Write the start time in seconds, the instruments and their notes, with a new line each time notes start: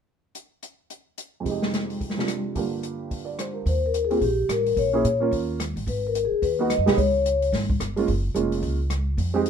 0.35 closed hi-hat
0.63 closed hi-hat
0.90 closed hi-hat
1.18 closed hi-hat
1.40 upright piano F2 C3
1.46 upright piano G#3 D#4, kick, open hi-hat
1.51 upright piano G4
1.62 snare
1.73 snare, closed hi-hat
1.90 open hi-hat
2.01 kick, open hi-hat
2.10 snare
2.17 upright piano C3 G3 D4 F4, snare
2.28 cross-stick, closed hi-hat
2.55 upright piano G2 D3 A#3 F4 G4, kick, open hi-hat
2.83 closed hi-hat
3.11 kick, open hi-hat
3.25 upright piano D5
3.39 upright piano C5, cross-stick, closed hi-hat
3.53 upright piano A#4
3.66 upright bass D#2, vibraphone C5, kick, open hi-hat
3.86 vibraphone A#4
3.94 closed hi-hat
4.05 vibraphone G#4
4.10 upright piano A#3 C4 F4 G4, open hi-hat
4.21 upright bass A#1, vibraphone G4, kick, open hi-hat
4.49 upright bass A1, vibraphone A#4, cross-stick, closed hi-hat
4.66 open hi-hat
4.76 upright bass A#1, vibraphone C#5, kick, open hi-hat
4.93 upright piano A#3 C#4 E4 G#4
5.05 upright bass A#2, closed hi-hat
5.20 upright piano A#3 C#4 F4 A#4
5.31 upright bass D#2, kick, open hi-hat
5.60 cross-stick, closed hi-hat
5.76 upright bass A1, open hi-hat
5.87 upright bass G#1, vibraphone B4, kick, open hi-hat
6.07 vibraphone A#4
6.15 closed hi-hat
6.25 vibraphone G#4
6.31 muted upright bass stroke
6.42 upright bass D#2, vibraphone B4, kick, open hi-hat
6.59 upright piano A#3 B3 D#4 F#4
6.70 vibraphone D#5, cross-stick, closed hi-hat
6.79 upright bass F#2
6.86 upright bass C2, upright piano G#3 B3 D#4 G4, snare, open hi-hat
6.97 upright bass C#2, vibraphone C#5, kick, open hi-hat
7.26 closed hi-hat
7.42 open hi-hat
7.53 upright bass G#1, kick, snare, open hi-hat
7.70 kick
7.80 upright bass G1, cross-stick, closed hi-hat
7.96 upright piano G#3 A#3 C#4 F4, open hi-hat
8.08 upright bass F#1, kick, open hi-hat
8.34 upright bass F1, upright piano G#3 A#3 C#4 F4, closed hi-hat
8.52 open hi-hat
8.62 upright bass C#2, kick, open hi-hat
8.90 cross-stick, closed hi-hat
9.17 upright bass F2, kick, open hi-hat
9.34 upright piano G#3 C4 D#4 G4
9.46 closed hi-hat